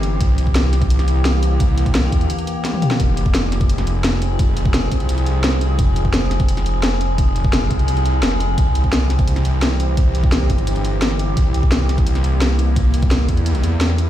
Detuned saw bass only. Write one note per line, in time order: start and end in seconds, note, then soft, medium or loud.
0.00 0.19 G1 loud
0.21 1.59 C2 medium
1.60 2.11 C2 medium
2.12 2.30 E2 loud
3.00 4.38 F1 loud
4.39 4.90 F1 medium
4.92 5.77 C2 loud
5.79 7.17 F1 loud
7.18 7.69 F1 medium
7.71 8.22 C2 loud
8.23 8.56 F1 loud
8.58 9.96 C2 medium
9.97 10.48 C2 loud
10.50 11.35 G1 loud
11.37 12.75 C2 loud
12.76 13.27 C2 loud
13.29 13.62 E2 loud
13.63 14.10 E2 loud